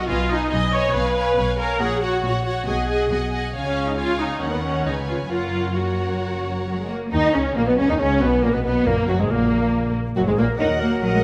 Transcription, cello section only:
0.09 B2
0.52 B2
0.95 B2
1.38 B2
1.81 A#2
2.24 A#2
2.67 B2
3.10 B2
3.54 C#3
4.41 D#3
4.85 C#3
5.30 F#2
6.67 F#3
6.78 G#3
6.90 A#3
7.13 D#4
7.35 C#4
7.56 A#3
7.68 B3
7.78 C#4
7.89 D#4
7.99 C#4
8.21 B3
8.43 A#3
8.54 B3
8.65 B3
8.86 A#3
9.08 F#3
9.19 G#3
9.30 A#3
10.17 F#3
10.28 G#3
10.38 A#3
10.60 D#4
10.81 A#3
11.03 F#3
11.14 G#3

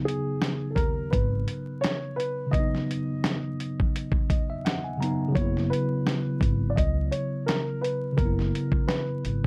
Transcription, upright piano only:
0.05 G#4
0.70 A4
0.75 A#4
1.11 B4
1.81 C#5
2.16 B4
2.51 D#5
5.35 C#5
5.70 B4
6.70 D5
6.76 D#5
7.11 C#5
7.46 A#4
7.81 B4
8.17 A#4
8.88 B4

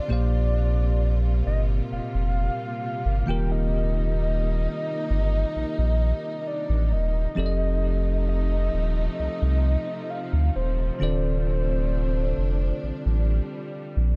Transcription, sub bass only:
0.10 A#1
1.46 G1
1.92 F1
2.14 F1
3.05 G1
3.28 D#1
5.10 G1
5.56 A#1
5.78 A#1
6.69 A1
6.92 D#1
7.37 F1
8.74 D#1
9.19 C2
9.42 C2
10.33 D2
10.56 D#1
11.01 D1
12.37 F1
12.83 A1
13.06 A1
13.96 A#1

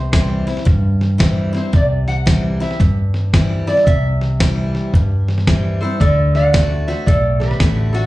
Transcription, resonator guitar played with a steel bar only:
Already playing: C5
0.12 C5
1.57 C5
1.76 D5
2.08 F#5
2.62 E5
3.68 D5
3.87 E5
5.80 A4 C5
6.00 A4 D5
6.36 D5 F#5
6.88 C5 E5
7.06 A4 D5
7.40 G4 B4
7.93 F#4 A4

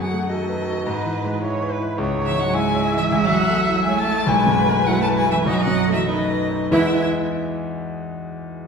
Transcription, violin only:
0.01 F#5
0.30 D#5
2.25 E5
2.40 F#5
2.54 G#5
2.98 E5
3.11 G#5
3.25 F#5
3.84 G#5
3.99 A5
4.28 G#5
4.87 F#5
5.02 A5
5.17 G#5
5.32 E5
5.47 F#5
5.54 E5
5.61 F#5
5.93 E5
6.09 D#5
6.71 E5

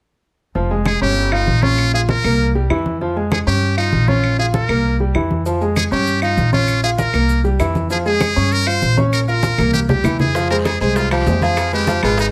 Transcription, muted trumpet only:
0.87 G#4
1.02 G4
1.33 D#4
1.63 F4
1.94 G#4
2.10 A#4
3.32 G#4
3.47 G4
3.78 D#4
4.08 F4
4.40 G#4
4.55 A#4
5.77 G#4
5.92 G4
6.23 D#4
6.53 F4
6.84 G#4
6.99 A#4
7.92 G#4
8.07 G#4
8.53 A#4
8.67 C5
9.13 A#4
9.28 A#4
9.74 G4
9.89 G4
10.20 G#4
10.51 A#4
10.66 G#4
10.81 G#4
10.96 F4
11.12 G4
11.43 G#4
11.74 G4
12.04 F4
12.20 D#4

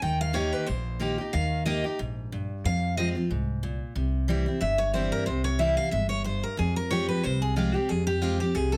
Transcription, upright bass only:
0.03 D#2
0.69 A#1
1.34 D#2
1.99 A#1
2.64 F2
3.30 C2
3.95 C2
4.61 G1
5.27 C2
5.93 G1
6.59 F2
7.25 C2
7.90 F2
8.55 C2

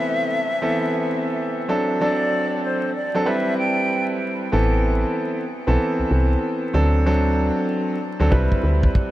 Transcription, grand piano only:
Already playing: E3 B3 C4 A4
0.62 E3 B3 C4 A4
1.68 F#3 C4 D4 A4
2.01 F#3 C4 D4 A4
3.14 F#3 C4 D4 A4
3.26 G3 C4 E4 B4
4.52 E3 B3 C4 A4
5.67 E3 B3 C4 A4
6.74 F#3 C4 D4 A4
7.06 F#3 C4 D4 A4
8.20 F#3 C4 D4 A4
8.31 G3 C4 E4 B4

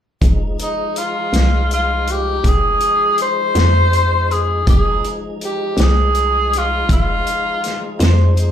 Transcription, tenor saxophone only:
0.62 D#4
0.98 F4
1.73 F4
2.11 G4
2.48 G#4
3.22 C5
4.32 G#4
4.68 G#4
5.45 G4
5.82 G#4
6.58 F4
6.92 F4

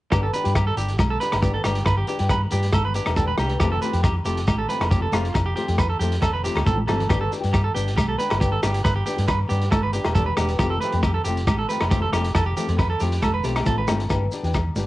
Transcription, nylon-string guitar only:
0.11 B3 D4 G4
0.33 B3 D4 G4
0.44 D4 G4
0.77 D4 G4, muted nylon-string guitar stroke
1.20 B3 D4 G4
1.42 B3 D4 G4
1.64 B3 D4 G4
2.07 B3 D4 G4
2.19 D4 G4
2.51 B3 D4 G4
2.95 B3 D4 G4
3.15 B3 D4 G4
3.38 B3 D4 G4
3.61 F3 A3 C4 G4
3.81 F3 A3 C4 G4
3.93 A3 C4 G4
4.25 F3 A3 C4 G4
4.68 F3 A3 C4 G4
4.91 F3 C4 G4, muted nylon-string guitar stroke
5.12 F3 A3 C4 G4
5.56 F3 A3 C4 G4
5.68 A3 C4 G4
6.01 F3 A3 C4 G4
6.43 F3 A3 C4 G4
6.65 F3 C4, muted nylon-string guitar stroke
6.88 F3 A3 C4 G4
7.09 B3 D4 G4
7.30 B3 D4 G4
7.41 D4 G4
7.74 B3 D4 G4
8.18 B3 D4 G4
8.41 B3 D4 G4
8.63 B3 D4 G4
9.06 B3 D4 G4
9.17 muted nylon-string guitar stroke
9.48 B3 D4 G4
9.93 B3 D4 G4
10.14 B3 D4 G4
10.38 B3 D4 G4
10.60 F3 A3 C4 G4
10.83 F3 A3 C4 G4
10.94 A3 C4 G4
11.26 F3 A3 C4 G4
11.69 F3 A3 C4 G4
11.90 F3 A3 C4 G4
12.13 F3 A3 C4 G4
12.57 F3 A3 C4 G4
12.68 A3 C4, muted nylon-string guitar stroke
13.00 F3 A3 C4 G4
13.43 F3 A3 C4 G4
13.65 F3 A3 C4, muted nylon-string guitar stroke
13.87 F3 A3 C4 G4
14.09 B3 D4 G4
14.32 B3 D4 G4
14.44 D4 G4
14.75 B3 D4 G4

